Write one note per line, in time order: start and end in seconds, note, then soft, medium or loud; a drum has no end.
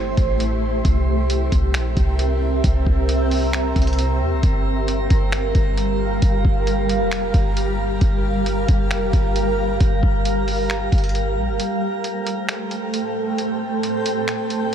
0.00 0.16 G1 medium
0.00 0.81 A3 medium
0.00 0.81 E4 medium
0.00 11.55 G4 medium
0.00 0.81 C5 medium
0.17 0.82 A1 loud
0.17 kick loud
0.17 closed hi-hat medium
0.40 closed hi-hat medium
0.85 1.49 C2 loud
0.85 4.39 C4 medium
0.85 11.55 A#4 medium
0.85 4.39 E5 medium
0.85 kick loud
0.85 closed hi-hat medium
1.30 closed hi-hat medium
1.52 1.76 C2 loud
1.52 kick loud
1.52 closed hi-hat medium
1.74 1.96 A#1 loud
1.74 finger snap loud
1.74 closed hi-hat medium
1.97 2.61 C2 loud
1.97 kick loud
1.97 closed hi-hat medium
2.19 closed hi-hat medium
2.64 2.85 C2 loud
2.64 kick loud
2.64 closed hi-hat medium
2.86 3.72 C2 loud
2.86 kick loud
3.09 closed hi-hat medium
3.31 open hi-hat medium
3.53 finger snap loud
3.53 closed hi-hat medium
3.76 4.22 C2 loud
3.76 kick loud
3.76 closed hi-hat medium
3.82 closed hi-hat medium
3.87 closed hi-hat medium
3.93 closed hi-hat medium
3.99 closed hi-hat medium
4.21 4.33 E2 loud
4.32 4.42 C2 loud
4.43 5.08 G1 loud
4.43 11.55 G3 medium
4.43 11.55 F5 medium
4.43 kick loud
4.43 closed hi-hat medium
4.88 closed hi-hat medium
5.10 5.53 G1 loud
5.10 kick loud
5.10 closed hi-hat medium
5.32 finger snap loud
5.32 closed hi-hat medium
5.55 6.19 G1 loud
5.55 kick loud
5.55 closed hi-hat medium
5.78 closed hi-hat medium
6.22 6.44 G1 loud
6.22 kick loud
6.22 closed hi-hat medium
6.45 7.02 G1 loud
6.45 kick loud
6.67 closed hi-hat medium
6.89 closed hi-hat medium
7.00 7.32 F1 loud
7.12 finger snap loud
7.12 closed hi-hat medium
7.34 7.99 G1 loud
7.34 kick loud
7.34 closed hi-hat medium
7.57 closed hi-hat medium
8.01 8.66 G1 loud
8.01 kick loud
8.01 closed hi-hat medium
8.46 closed hi-hat medium
8.68 8.92 G1 loud
8.68 kick loud
8.68 closed hi-hat medium
8.91 9.12 F1 loud
8.91 finger snap loud
8.91 closed hi-hat medium
9.13 9.78 G1 loud
9.13 kick loud
9.13 closed hi-hat medium
9.36 closed hi-hat medium
9.80 10.02 G1 loud
9.80 kick loud
9.80 closed hi-hat medium
10.03 10.89 G1 loud
10.03 kick loud
10.25 closed hi-hat medium
10.48 open hi-hat medium
10.70 finger snap loud
10.70 closed hi-hat medium
10.92 11.38 G1 loud
10.92 kick loud
10.92 closed hi-hat medium
10.98 closed hi-hat medium
11.04 closed hi-hat medium
11.09 closed hi-hat medium
11.15 closed hi-hat medium
11.37 11.50 A#1 loud
11.48 11.59 G1 loud
11.59 14.75 A3 medium
11.59 14.75 A4 medium
11.59 14.75 C5 medium
11.59 14.75 G5 medium
11.59 closed hi-hat medium
12.04 closed hi-hat medium
12.27 closed hi-hat medium
12.49 finger snap loud
12.49 closed hi-hat medium
12.71 closed hi-hat medium
12.94 closed hi-hat medium
13.38 closed hi-hat medium
13.83 closed hi-hat medium
14.06 closed hi-hat medium
14.28 finger snap loud
14.28 closed hi-hat medium
14.50 closed hi-hat medium